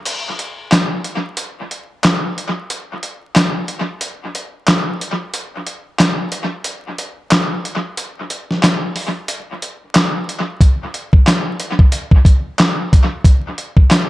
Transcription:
0.05 closed hi-hat medium
0.05 crash medium
0.39 closed hi-hat medium
0.72 snare loud
0.72 clap medium
0.72 closed hi-hat medium
1.04 closed hi-hat medium
1.37 closed hi-hat loud
1.71 closed hi-hat medium
2.03 snare loud
2.03 clap loud
2.03 closed hi-hat medium
2.38 closed hi-hat medium
2.70 closed hi-hat medium
3.03 closed hi-hat medium
3.36 snare loud
3.36 clap loud
3.36 closed hi-hat loud
3.68 closed hi-hat medium
4.01 closed hi-hat loud
4.35 closed hi-hat medium
4.67 snare loud
4.67 clap medium
4.67 closed hi-hat medium
5.01 closed hi-hat medium
5.34 closed hi-hat medium
5.67 closed hi-hat medium
5.99 snare loud
5.99 clap loud
5.99 closed hi-hat medium
6.32 closed hi-hat medium
6.64 closed hi-hat loud
6.98 closed hi-hat medium
7.31 snare loud
7.31 clap loud
7.31 closed hi-hat medium
7.65 closed hi-hat medium
7.97 closed hi-hat medium
8.30 closed hi-hat medium
8.51 snare soft
8.63 snare loud
8.63 clap medium
8.63 closed hi-hat medium
8.96 open hi-hat soft
9.28 closed hi-hat loud
9.62 closed hi-hat medium
9.94 snare loud
9.94 clap loud
9.94 closed hi-hat medium
10.29 closed hi-hat medium
10.61 kick loud
10.61 closed hi-hat medium
10.94 closed hi-hat medium
11.13 kick medium
11.27 snare loud
11.27 clap loud
11.27 closed hi-hat medium
11.60 closed hi-hat medium
11.79 kick medium
11.92 closed hi-hat loud
12.11 kick medium
12.25 kick medium
12.25 closed hi-hat medium
12.58 snare loud
12.58 clap loud
12.58 closed hi-hat medium
12.93 kick medium
12.93 closed hi-hat medium
13.24 kick loud
13.24 closed hi-hat medium
13.58 closed hi-hat medium
13.77 kick loud
13.91 snare loud
13.91 clap loud
13.91 closed hi-hat medium

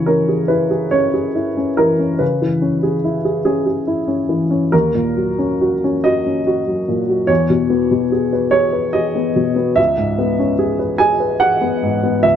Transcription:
0.00 2.17 C#3 soft
0.00 0.21 E3 soft
0.00 0.91 C#5 medium
0.06 0.42 C#4 soft
0.06 0.50 A#4 soft
0.29 0.63 G#4 soft
0.48 0.84 E4 soft
0.48 0.92 B4 soft
0.71 1.06 G#4 soft
0.91 1.27 C#4 soft
0.91 1.78 C#5 medium
1.14 1.49 G#4 soft
1.35 1.70 E4 soft
1.57 1.91 C#4 soft
1.77 2.12 E3 soft
1.77 2.20 A#4 medium
1.99 2.33 C#4 soft
2.19 4.68 C#3 soft
2.19 3.45 B4 medium
2.42 2.75 E3 soft
2.62 2.95 C#4 soft
2.83 3.16 G#4 soft
3.04 3.38 E4 soft
3.25 3.44 G#4 soft
3.45 3.79 C#4 soft
3.45 3.65 G#4 soft
3.66 4.00 G#4 soft
3.87 4.21 E4 soft
4.08 4.42 C#4 soft
4.29 4.64 E3 soft
4.51 4.72 C#4 soft
4.72 7.26 D#2 soft
4.72 6.05 A#4 medium
4.95 5.30 A#2 soft
5.16 5.52 F#3 soft
5.39 5.74 C#4 soft
5.61 5.96 F#4 soft
5.84 6.18 C#4 soft
6.04 6.39 F#4 soft
6.04 7.29 D#5 medium
6.26 6.60 C#4 soft
6.47 6.80 F#4 soft
6.67 7.01 F#3 soft
6.88 7.21 A#2 soft
7.08 7.29 F#3 soft
7.27 9.73 E2 soft
7.27 8.49 C#5 medium
7.50 7.83 B2 soft
7.70 8.04 B3 soft
7.91 8.25 B2 soft
8.12 8.45 G#4 soft
8.33 8.66 B4 soft
8.51 8.86 G#4 soft
8.51 8.93 C#5 medium
8.73 9.06 B4 soft
8.93 9.28 G#4 soft
8.93 9.77 D#5 medium
9.15 9.49 B3 soft
9.36 9.69 B2 soft
9.56 9.77 B3 soft
9.76 12.20 C#2 soft
9.76 11.00 E5 medium
9.97 10.31 G#2 soft
10.18 10.52 B3 soft
10.39 10.72 C#4 soft
10.59 10.92 G#4 soft
10.79 11.12 B4 soft
10.98 11.33 G#4 soft
10.98 11.40 G#5 medium
11.20 11.53 B4 soft
11.40 11.74 G#4 soft
11.40 12.23 F#5 medium
11.61 11.95 B3 soft
11.83 12.16 G#2 soft
12.03 12.36 B3 soft
12.23 12.36 C#2 soft
12.23 12.36 E5 medium

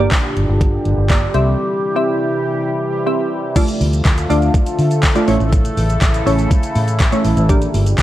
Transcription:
0.00 1.33 A#2 medium
0.00 1.33 D3 medium
0.00 3.52 G3 medium
0.00 0.78 A#3 medium
0.00 1.33 D4 medium
0.00 0.78 G4 medium
0.00 3.52 G4 medium
0.00 0.79 D5 loud
0.11 kick loud
0.11 clap loud
0.11 closed hi-hat medium
0.36 0.46 G1 medium
0.36 closed hi-hat medium
0.49 0.77 G1 medium
0.61 kick loud
0.61 closed hi-hat medium
0.85 0.95 G1 medium
0.85 closed hi-hat soft
0.98 1.26 G1 medium
1.10 1.34 A#3 medium
1.10 1.33 G4 medium
1.10 1.35 D5 medium
1.10 kick loud
1.10 clap loud
1.10 closed hi-hat medium
1.34 1.54 C2 loud
1.34 3.54 C3 medium
1.34 3.54 E3 medium
1.34 1.84 C4 medium
1.34 3.54 E4 medium
1.34 1.84 G4 medium
1.34 1.84 E5 loud
1.34 closed hi-hat medium
1.96 2.75 C4 medium
1.96 2.75 G4 medium
1.96 2.75 E5 medium
3.06 3.46 C4 medium
3.06 3.46 G4 medium
3.06 3.46 E5 medium
3.56 5.26 D3 medium
3.56 5.26 F3 medium
3.56 4.15 A3 medium
3.56 7.45 A3 medium
3.56 4.15 D4 medium
3.56 4.15 F4 medium
3.56 5.26 F4 medium
3.56 7.45 A4 medium
3.56 4.15 D5 loud
3.56 kick loud
3.56 closed hi-hat medium
3.56 crash loud
3.56 shaker medium
3.68 closed hi-hat medium
3.68 shaker medium
3.81 4.00 D2 loud
3.81 open hi-hat medium
3.81 shaker medium
3.93 closed hi-hat medium
3.93 shaker medium
4.05 4.24 D2 loud
4.05 kick loud
4.05 clap loud
4.05 clap medium
4.05 closed hi-hat medium
4.05 shaker medium
4.18 closed hi-hat medium
4.18 shaker medium
4.29 4.49 D2 medium
4.29 4.99 A3 medium
4.29 4.99 D4 medium
4.29 4.99 F4 medium
4.29 4.99 D5 medium
4.29 open hi-hat medium
4.29 shaker medium
4.42 closed hi-hat soft
4.42 shaker medium
4.54 kick loud
4.54 closed hi-hat medium
4.54 shaker medium
4.67 closed hi-hat medium
4.67 shaker medium
4.79 5.17 D3 medium
4.79 open hi-hat medium
4.79 shaker soft
4.91 closed hi-hat soft
4.91 shaker medium
5.03 kick loud
5.03 clap medium
5.03 clap loud
5.03 closed hi-hat medium
5.03 shaker medium
5.16 5.27 A3 medium
5.16 5.28 D4 medium
5.16 5.28 F4 medium
5.16 5.28 D5 loud
5.16 closed hi-hat medium
5.16 shaker medium
5.28 5.38 A1 medium
5.28 7.47 C#3 medium
5.28 7.47 E3 medium
5.28 6.07 A3 medium
5.28 6.07 C#4 medium
5.28 7.47 E4 medium
5.28 6.07 E4 medium
5.28 6.07 C#5 loud
5.28 open hi-hat medium
5.28 shaker medium
5.40 5.69 A1 loud
5.40 closed hi-hat soft
5.40 shaker medium
5.53 kick loud
5.53 closed hi-hat medium
5.53 shaker medium
5.65 closed hi-hat medium
5.65 shaker medium
5.77 5.96 A1 loud
5.77 open hi-hat medium
5.77 shaker medium
5.90 closed hi-hat medium
5.90 shaker medium
6.02 6.21 A1 loud
6.02 kick loud
6.02 clap loud
6.02 clap medium
6.02 closed hi-hat medium
6.02 shaker medium
6.14 closed hi-hat medium
6.14 shaker medium
6.26 6.45 A1 medium
6.26 6.95 A3 medium
6.26 6.96 C#4 medium
6.26 6.96 E4 medium
6.26 6.96 C#5 medium
6.26 open hi-hat medium
6.26 shaker medium
6.39 closed hi-hat soft
6.39 shaker medium
6.51 kick loud
6.51 closed hi-hat medium
6.51 shaker medium
6.63 closed hi-hat medium
6.63 shaker medium
6.76 7.14 A2 medium
6.76 open hi-hat medium
6.76 shaker soft
6.88 closed hi-hat medium
6.88 shaker medium
7.00 kick loud
7.00 clap medium
7.00 clap loud
7.00 closed hi-hat medium
7.00 shaker medium
7.12 7.42 A3 medium
7.12 7.42 C#4 medium
7.12 7.42 E4 medium
7.12 7.42 C#5 medium
7.12 closed hi-hat medium
7.12 shaker medium
7.25 7.34 A1 medium
7.25 open hi-hat medium
7.25 shaker medium
7.37 7.66 A1 loud
7.37 closed hi-hat soft
7.37 shaker medium
7.49 8.03 A#2 medium
7.49 8.03 D3 medium
7.49 8.03 G3 medium
7.49 8.03 A#3 medium
7.49 8.03 D4 medium
7.49 8.03 G4 medium
7.49 8.03 D5 medium
7.49 kick loud
7.49 closed hi-hat medium
7.49 shaker medium
7.62 closed hi-hat medium
7.62 shaker medium
7.74 7.93 G1 loud
7.74 open hi-hat medium
7.74 shaker medium
7.86 closed hi-hat medium
7.86 shaker medium
7.98 8.03 G1 loud
7.98 kick loud
7.98 clap loud
7.98 clap medium
7.98 closed hi-hat medium
7.98 shaker medium

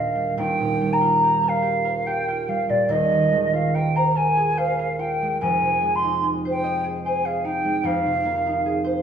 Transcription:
0.00 0.36 D#1 medium
0.00 0.37 D#2 medium
0.00 0.42 A#2 soft
0.00 0.14 G3 medium
0.00 3.58 A#3 soft
0.00 0.41 D4 soft
0.00 0.11 D#4 medium
0.00 1.00 F4 medium
0.00 0.41 G#4 medium
0.00 0.56 A#4 medium
0.00 0.41 C5 medium
0.00 0.42 D5 medium
0.00 1.45 D#5 medium
0.00 0.37 F5 medium
0.00 0.54 F5 medium
0.15 0.80 G3 soft
0.37 2.88 D#1 medium
0.37 2.89 D#2 medium
0.37 0.94 G5 medium
0.60 2.68 A#2 medium
0.81 2.47 G3 medium
0.93 1.50 A#5 medium
1.01 2.27 F4 medium
1.23 1.61 G4 medium
1.43 1.84 A#4 medium
1.48 2.08 F5 medium
1.62 2.06 G4 medium
1.85 3.74 A#4 medium
2.06 2.94 G4 medium
2.06 2.50 G5 medium
2.28 3.52 F4 soft
2.48 2.94 G3 medium
2.48 2.71 F5 medium
2.69 2.94 A#2 soft
2.69 2.92 D5 medium
2.89 5.44 D#1 medium
2.89 5.44 D#2 medium
2.89 3.53 D#5 medium
3.11 5.45 D#3 medium
3.32 5.21 G#3 medium
3.53 4.98 F4 soft
3.53 3.76 F5 medium
3.74 4.14 A#4 medium
3.74 3.97 G5 medium
3.95 4.56 C5 soft
3.95 4.18 A#5 medium
4.15 4.78 A#4 medium
4.15 4.59 G#5 medium
4.37 6.22 G#4 medium
4.57 6.44 C5 medium
4.57 5.01 F5 medium
4.79 5.44 A#4 soft
4.99 8.89 F4 medium
4.99 5.40 G5 medium
5.22 5.81 G#3 soft
5.41 7.82 F1 medium
5.41 7.83 F2 medium
5.41 5.97 G#5 medium
5.62 7.88 C3 soft
5.82 7.63 G#3 soft
5.95 6.25 C6 medium
6.04 7.44 D#4 soft
6.24 6.83 G#4 medium
6.45 7.05 C5 medium
6.50 6.84 G5 medium
6.64 9.02 D#5 medium
6.84 7.24 G#4 medium
7.05 8.83 C5 medium
7.05 7.26 G#5 medium
7.25 8.64 G#4 soft
7.25 7.46 F5 medium
7.44 8.45 D#4 medium
7.44 7.87 G5 medium
7.65 9.02 G#3 medium
7.83 9.02 F1 medium
7.83 9.02 F2 medium
7.83 9.02 F5 medium
8.06 9.02 C3 medium
8.25 9.02 A#3 medium
8.46 9.02 D#4 medium
8.66 9.02 G#4 medium
8.84 9.02 C5 medium

